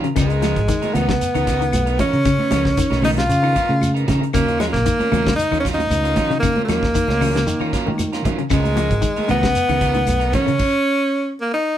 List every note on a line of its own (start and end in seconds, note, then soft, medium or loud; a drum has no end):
0.04 0.14 C#3 medium
0.04 closed hi-hat soft
0.16 0.53 C#2 medium
0.16 0.39 C#3 medium
0.16 0.30 F3 medium
0.16 0.96 G#3 medium
0.16 0.30 B3 medium
0.16 0.29 D#4 medium
0.16 0.29 A#4 medium
0.16 kick medium
0.16 closed hi-hat medium
0.16 claves medium
0.16 shekere medium
0.30 0.41 B3 soft
0.30 0.42 D#4 soft
0.30 0.42 A#4 soft
0.30 closed hi-hat soft
0.42 0.65 F3 medium
0.42 0.58 F3 medium
0.42 0.58 B3 medium
0.42 0.59 D#4 medium
0.42 0.59 A#4 medium
0.42 snare soft
0.42 closed hi-hat medium
0.42 high conga medium
0.42 claves medium
0.42 shekere soft
0.56 0.68 G#1 medium
0.56 kick medium
0.56 closed hi-hat soft
0.68 0.91 D#3 medium
0.68 kick medium
0.68 closed hi-hat medium
0.68 shekere medium
0.82 0.93 B3 soft
0.82 0.94 D#4 medium
0.82 0.94 A#4 medium
0.82 muted fingered electric bass stroke soft
0.82 closed hi-hat soft
0.82 high conga medium
0.94 1.19 C#2 medium
0.94 1.11 F3 medium
0.94 1.99 B3 medium
0.94 1.11 B3 medium
0.94 1.11 D#4 medium
0.94 1.11 A#4 medium
0.94 muted clean electric guitar stroke medium
0.94 closed hi-hat soft
0.94 high conga medium
0.94 low conga medium
0.94 claves medium
0.94 shekere soft
1.08 1.31 C#3 medium
1.08 kick medium
1.08 snare medium
1.08 closed hi-hat soft
1.21 closed hi-hat medium
1.21 shekere medium
1.34 1.70 C#2 medium
1.34 1.58 D#3 medium
1.34 1.46 B3 soft
1.34 1.46 D#4 soft
1.34 1.46 A#4 medium
1.34 closed hi-hat soft
1.34 low conga medium
1.34 claves medium
1.46 1.63 F3 medium
1.46 1.63 B3 medium
1.46 1.63 D#4 medium
1.46 1.63 A#4 medium
1.46 kick medium
1.46 snare soft
1.46 closed hi-hat medium
1.46 shekere soft
1.61 1.84 D#3 medium
1.61 closed hi-hat soft
1.73 1.97 B1 medium
1.73 closed hi-hat medium
1.73 high conga medium
1.73 claves medium
1.73 shekere medium
1.86 1.98 B3 soft
1.86 1.98 D#4 soft
1.86 1.99 A#4 soft
1.86 closed hi-hat soft
1.99 2.15 F3 soft
1.99 3.00 C#4 loud
1.99 2.16 D#4 medium
1.99 2.16 A#4 medium
1.99 muted clean electric guitar stroke medium
1.99 kick medium
1.99 closed hi-hat soft
1.99 high conga medium
1.99 low conga medium
1.99 shekere soft
2.13 2.37 C#3 medium
2.13 closed hi-hat soft
2.25 2.48 C#3 medium
2.25 kick medium
2.25 closed hi-hat medium
2.25 claves medium
2.25 shekere medium
2.38 2.50 B3 soft
2.38 2.51 D#4 soft
2.38 high conga medium
2.51 2.76 C#2 medium
2.51 2.67 F3 medium
2.51 2.74 F3 medium
2.51 2.67 B3 medium
2.51 2.68 D#4 medium
2.51 2.68 A#4 medium
2.51 snare soft
2.51 closed hi-hat medium
2.51 high conga medium
2.51 claves medium
2.51 shekere soft
2.65 kick medium
2.65 snare soft
2.77 3.01 D#3 medium
2.77 kick medium
2.77 closed hi-hat medium
2.77 shekere medium
2.90 3.27 B1 medium
2.90 3.01 B3 soft
2.90 3.02 D#4 soft
2.90 3.02 A#4 medium
2.90 snare soft
2.90 high conga medium
3.02 3.16 C#3 medium
3.02 3.19 F3 medium
3.02 3.19 B3 medium
3.02 3.20 D#4 medium
3.02 3.10 D#4 loud
3.02 3.20 A#4 medium
3.02 open hi-hat medium
3.02 high conga medium
3.02 low conga medium
3.02 claves medium
3.02 shekere soft
3.17 3.40 C#3 medium
3.17 3.92 F4 medium
3.17 snare medium
3.17 closed hi-hat soft
3.29 3.53 C#3 loud
3.29 closed hi-hat medium
3.29 shekere medium
3.43 3.66 D#3 medium
3.43 3.54 B3 soft
3.43 3.54 D#4 soft
3.43 3.55 A#4 medium
3.43 claves medium
3.55 3.72 F3 medium
3.55 3.72 B3 medium
3.55 3.72 D#4 medium
3.55 3.72 A#4 medium
3.55 kick medium
3.55 closed hi-hat soft
3.55 shekere soft
3.69 4.05 C#3 medium
3.69 high conga medium
3.81 closed hi-hat medium
3.81 high conga medium
3.81 claves medium
3.81 shekere medium
3.94 4.06 B3 soft
3.94 4.07 D#4 soft
3.94 4.07 A#4 medium
3.94 closed hi-hat soft
4.07 4.21 C#3 medium
4.07 4.24 F3 medium
4.07 4.24 D#4 medium
4.07 4.24 A#4 medium
4.07 muted clean electric guitar stroke medium
4.07 kick medium
4.07 snare soft
4.07 closed hi-hat soft
4.07 high conga medium
4.07 low conga medium
4.07 shekere soft
4.21 4.32 C#3 medium
4.21 closed hi-hat soft
4.33 4.71 D#2 medium
4.33 4.57 C#3 medium
4.33 4.48 F#3 medium
4.33 4.58 A#3 medium
4.33 4.47 C#4 medium
4.33 4.45 A#4 medium
4.33 muted clean electric guitar stroke medium
4.33 kick medium
4.33 closed hi-hat medium
4.33 claves medium
4.33 shekere medium
4.46 4.59 C#4 soft
4.46 4.59 F4 soft
4.46 4.59 A#4 soft
4.46 closed hi-hat soft
4.59 4.83 F3 medium
4.59 4.76 F#3 medium
4.59 4.66 G#3 medium
4.59 4.76 C#4 medium
4.59 4.76 F4 medium
4.59 4.77 A#4 medium
4.59 snare soft
4.59 closed hi-hat soft
4.59 high conga medium
4.59 claves medium
4.59 shekere soft
4.73 4.86 A#1 medium
4.73 5.34 A#3 medium
4.73 kick medium
4.73 snare soft
4.73 closed hi-hat soft
4.86 5.09 D#3 medium
4.86 kick medium
4.86 closed hi-hat medium
4.86 shekere medium
4.99 5.10 C#4 soft
4.99 5.11 F4 soft
4.99 5.11 A#4 medium
4.99 muted fingered electric bass stroke soft
4.99 closed hi-hat soft
4.99 high conga medium
5.12 5.37 D#2 medium
5.12 5.24 C#3 medium
5.12 5.28 F#3 soft
5.12 5.28 C#4 medium
5.12 5.28 F4 medium
5.12 5.28 A#4 medium
5.12 closed hi-hat soft
5.12 high conga medium
5.12 low conga medium
5.12 claves medium
5.12 shekere soft
5.26 5.49 C#3 medium
5.26 kick medium
5.26 snare medium
5.26 closed hi-hat soft
5.36 5.59 D#4 loud
5.36 closed hi-hat medium
5.36 shekere medium
5.51 5.88 D#2 medium
5.51 5.75 D#3 medium
5.51 5.63 C#4 soft
5.51 5.63 F4 soft
5.51 5.64 A#4 medium
5.51 closed hi-hat soft
5.51 low conga medium
5.51 claves medium
5.60 5.67 C#4 medium
5.64 5.80 F#3 medium
5.64 5.81 C#4 medium
5.64 5.81 F4 medium
5.64 5.81 A#4 medium
5.64 kick medium
5.64 snare soft
5.64 closed hi-hat soft
5.64 shekere soft
5.74 6.37 D#4 loud
5.78 6.02 D#3 medium
5.78 closed hi-hat soft
5.78 high conga medium
5.90 6.14 C#2 medium
5.90 closed hi-hat medium
5.90 high conga medium
5.90 claves medium
5.90 shekere medium
6.04 6.15 C#4 soft
6.04 6.15 F4 soft
6.04 6.16 A#4 medium
6.04 closed hi-hat soft
6.16 6.32 F#3 medium
6.16 6.33 C#4 medium
6.16 6.33 F4 medium
6.16 6.33 A#4 medium
6.16 kick medium
6.16 closed hi-hat soft
6.16 high conga medium
6.16 low conga medium
6.16 shekere soft
6.30 6.41 C#3 medium
6.30 6.54 D#3 medium
6.30 closed hi-hat soft
6.40 6.66 C#3 medium
6.40 6.64 A#3 loud
6.40 kick medium
6.40 closed hi-hat medium
6.40 claves medium
6.40 shekere medium
6.56 6.67 C#4 soft
6.56 6.67 F4 soft
6.56 6.68 A#4 soft
6.56 high conga medium
6.65 6.85 F#3 medium
6.65 8.19 A#3 medium
6.65 6.85 C#4 soft
6.65 6.85 F4 medium
6.65 high conga medium
6.69 6.93 D#2 medium
6.69 6.92 F3 medium
6.69 6.85 A#4 medium
6.69 snare soft
6.69 closed hi-hat soft
6.69 claves medium
6.69 shekere soft
6.83 kick medium
6.83 snare soft
6.95 7.18 D#3 medium
6.95 kick medium
6.95 closed hi-hat medium
6.95 shekere medium
7.08 7.44 C#2 medium
7.08 7.20 C#4 soft
7.08 7.20 F4 soft
7.08 muted clean electric guitar stroke medium
7.08 snare soft
7.08 high conga medium
7.21 7.33 C#3 medium
7.21 7.37 F#3 medium
7.21 7.37 C#4 medium
7.21 7.38 F4 medium
7.21 7.38 A#4 medium
7.21 open hi-hat medium
7.21 high conga medium
7.21 low conga medium
7.21 claves medium
7.21 shekere soft
7.35 7.58 C#3 medium
7.35 snare medium
7.35 closed hi-hat soft
7.47 7.71 D#3 loud
7.47 closed hi-hat medium
7.47 shekere medium
7.60 7.84 D#3 medium
7.60 7.72 C#4 soft
7.60 7.72 F4 soft
7.60 7.73 A#4 medium
7.60 low conga medium
7.60 claves medium
7.73 7.89 F#3 medium
7.73 7.89 C#4 medium
7.73 7.89 F4 medium
7.73 7.90 A#4 medium
7.73 kick medium
7.73 snare soft
7.73 closed hi-hat medium
7.73 shekere soft
7.86 8.10 D#3 medium
7.86 8.23 D#3 medium
7.86 high conga medium
7.98 closed hi-hat medium
7.98 high conga medium
7.98 claves medium
7.98 shekere medium
8.12 8.23 C#4 soft
8.12 8.23 F4 medium
8.12 8.24 A#4 medium
8.12 snare soft
8.12 closed hi-hat soft
8.24 8.38 D#3 medium
8.24 8.41 F#3 medium
8.24 8.41 C#4 medium
8.24 8.41 F4 medium
8.24 8.42 A#4 medium
8.24 kick medium
8.24 closed hi-hat soft
8.24 high conga medium
8.24 low conga medium
8.24 shekere soft
8.38 8.49 C#3 medium
8.38 closed hi-hat soft
8.50 8.88 C#2 medium
8.50 8.74 C#3 medium
8.50 8.65 F3 medium
8.50 9.26 G#3 medium
8.50 8.64 B3 medium
8.50 8.63 D#4 medium
8.50 8.62 A#4 medium
8.50 kick medium
8.50 closed hi-hat medium
8.50 claves medium
8.50 shekere medium
8.64 8.76 B3 soft
8.64 8.76 D#4 soft
8.64 8.76 A#4 soft
8.64 closed hi-hat soft
8.64 high conga medium
8.76 9.00 F3 medium
8.76 8.93 F3 medium
8.76 8.94 D#4 medium
8.76 8.94 A#4 medium
8.76 muted clean electric guitar stroke medium
8.76 closed hi-hat soft
8.76 high conga medium
8.76 claves medium
8.76 shekere soft
8.91 9.02 G#1 medium
8.91 kick medium
8.91 closed hi-hat soft
9.02 9.25 D#3 medium
9.02 kick medium
9.02 closed hi-hat medium
9.02 shekere medium
9.16 9.28 B3 soft
9.16 9.28 D#4 medium
9.16 9.28 A#4 medium
9.16 muted fingered electric bass stroke soft
9.16 closed hi-hat soft
9.16 high conga medium
9.28 9.54 C#2 medium
9.28 9.41 C#3 medium
9.28 9.45 F3 medium
9.28 9.45 B3 medium
9.28 10.30 B3 loud
9.28 9.46 D#4 medium
9.28 9.46 A#4 medium
9.28 closed hi-hat soft
9.28 high conga medium
9.28 low conga medium
9.28 claves medium
9.28 shekere soft
9.42 9.66 C#3 medium
9.42 kick medium
9.42 snare medium
9.42 closed hi-hat soft
9.55 closed hi-hat medium
9.55 shekere medium
9.69 10.05 C#2 medium
9.69 9.92 D#3 medium
9.69 9.80 B3 soft
9.69 9.80 D#4 soft
9.69 9.80 A#4 soft
9.69 closed hi-hat soft
9.69 low conga medium
9.69 claves medium
9.80 9.97 F3 medium
9.80 9.98 B3 medium
9.80 9.98 D#4 medium
9.80 9.98 A#4 medium
9.80 kick medium
9.80 closed hi-hat soft
9.80 shekere soft
9.94 10.18 D#3 medium
9.94 closed hi-hat soft
9.94 high conga medium
10.07 10.32 B1 medium
10.07 closed hi-hat medium
10.07 high conga medium
10.07 claves medium
10.07 shekere medium
10.20 10.32 B3 soft
10.20 10.32 D#4 medium
10.20 10.33 A#4 medium
10.20 closed hi-hat soft
10.32 10.49 F3 medium
10.32 10.50 B3 medium
10.32 11.35 C#4 loud
10.32 10.50 D#4 medium
10.32 10.50 A#4 medium
10.32 kick medium
10.32 closed hi-hat soft
10.32 high conga medium
10.32 low conga medium
10.32 shekere soft
10.46 10.58 C#3 medium
10.46 10.59 C#3 medium
10.46 closed hi-hat soft
10.59 kick medium
10.59 crash medium
11.41 11.52 A#3 medium
11.54 11.78 D#4 medium